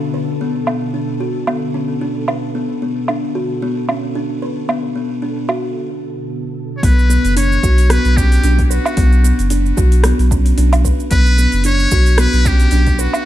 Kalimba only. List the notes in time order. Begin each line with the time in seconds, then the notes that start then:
0.14 B4
0.41 B3
0.67 B3
0.94 D4
1.20 F#4
1.47 B3
1.74 C#4
2.01 D4
2.28 B4
2.55 B3
2.82 B3
3.09 D4
3.35 F#4
3.62 B3
3.89 C#4
4.15 D4
4.42 B4
4.69 B3
4.96 B3
5.22 D4
5.49 F#4
6.83 B3
7.10 B3
7.36 D4
7.63 F#4
7.90 B3
8.17 C#4
8.44 D4
8.70 B4
8.97 B3
9.24 B3
9.51 D4
9.77 F#4
10.04 B3
10.31 C#4
10.58 D4
10.85 B4
11.12 B3
11.38 B3
11.65 D4
11.92 F#4
12.18 B3
12.45 C#4
12.72 D4
12.99 B4